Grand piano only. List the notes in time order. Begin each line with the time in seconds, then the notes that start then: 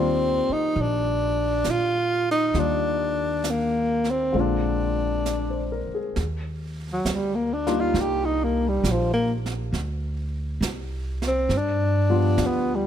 Already playing: D#3 G3 A#3 F4 D5
2.54 D#3 G3 A#3 D4 F4
4.32 D3 G#3 A#3 C4
4.37 F4
5.27 D5
5.50 C5
5.72 A#4
5.94 G#4
7.67 G3 A#3 D4 D#4 F4
12.10 F3 G3 B3 D4 F4